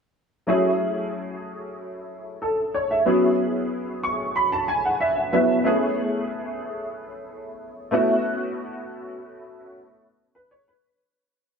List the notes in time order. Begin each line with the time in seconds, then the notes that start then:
0.47 F#3 A3 C#4 E4 G#4
2.42 A4
2.74 C#5
2.91 E5
3.06 F#3 B3 C#4 E4 G#4
4.03 C#6
4.36 B5
4.52 A5
4.68 G#5
4.85 F#5
5.00 E5
5.32 F#3 B3 C#4 E4 B4 E5
5.64 A3 B3 C#4 E4 G#4
7.91 A3 B3 C#4 E4 F#4
10.35 B4
10.51 C#5
10.68 B4